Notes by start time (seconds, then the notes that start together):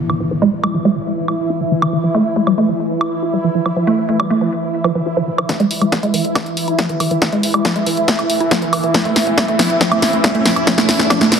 Already playing: E3 E4, impact
0.10 E3, high woodblock
0.20 E3
0.31 E3
0.42 G#3
0.64 G#3, high woodblock
0.74 F3
0.85 G#3
0.96 E3
1.28 high woodblock
1.50 E4
1.61 F3
1.71 E3
1.82 E3, high woodblock
1.93 E3
2.04 F3
2.15 A3
2.36 A3
2.47 G3, high woodblock
2.58 A3
2.69 F3
3.01 high woodblock
3.23 F4
3.33 G3
3.44 F3
3.55 F3
3.66 F3, high woodblock
3.77 F3
3.87 A3
4.09 A3
4.20 G3, high woodblock
4.30 A3
4.41 F3
4.84 F3, high woodblock
4.95 F3
5.06 F4
5.17 F3
5.28 F3
5.38 F3, high woodblock
5.49 E3 E4, kick, snare, closed hi-hat, riser
5.60 G#3, closed hi-hat
5.71 open hi-hat
5.81 G#3, closed hi-hat, high woodblock
5.92 F3, kick, snare, closed hi-hat
6.03 G#3, closed hi-hat
6.14 E3, open hi-hat
6.25 closed hi-hat
6.35 kick, snare, closed hi-hat, high woodblock
6.46 closed hi-hat
6.57 open hi-hat
6.68 E4, closed hi-hat
6.79 F3, kick, snare, closed hi-hat
6.89 E3, closed hi-hat
7.00 E3, open hi-hat, high woodblock
7.11 E3, closed hi-hat
7.22 E3, kick, snare, closed hi-hat
7.33 G#3, closed hi-hat
7.43 open hi-hat
7.54 G#3, closed hi-hat, high woodblock
7.65 F3, kick, snare, closed hi-hat
7.76 G#3, closed hi-hat
7.86 E3, open hi-hat
7.97 closed hi-hat
8.08 kick, snare, closed hi-hat
8.19 closed hi-hat, high woodblock
8.30 open hi-hat
8.40 E4, closed hi-hat
8.51 F3, kick, snare, closed hi-hat
8.62 E3, closed hi-hat
8.73 E3, open hi-hat, high woodblock
8.84 E3, closed hi-hat
8.94 F3, kick, snare, closed hi-hat
9.05 A3, closed hi-hat
9.16 snare, open hi-hat
9.27 A3, closed hi-hat
9.38 G3, kick, snare, closed hi-hat, high woodblock
9.48 A3, closed hi-hat
9.59 F3, snare, open hi-hat
9.70 closed hi-hat
9.81 F3, kick, snare, closed hi-hat
9.92 A3, closed hi-hat, high woodblock
10.02 snare, open hi-hat
10.13 A3, closed hi-hat
10.24 G3, kick, snare, closed hi-hat
10.35 A3, closed hi-hat
10.46 F3, snare, open hi-hat
10.56 closed hi-hat, high woodblock
10.67 F3, kick, snare, closed hi-hat
10.78 A3, snare, closed hi-hat
10.89 snare, open hi-hat
10.99 A3, snare, closed hi-hat
11.10 F3, kick, snare, closed hi-hat, high woodblock
11.21 A3, snare, closed hi-hat
11.32 snare, open hi-hat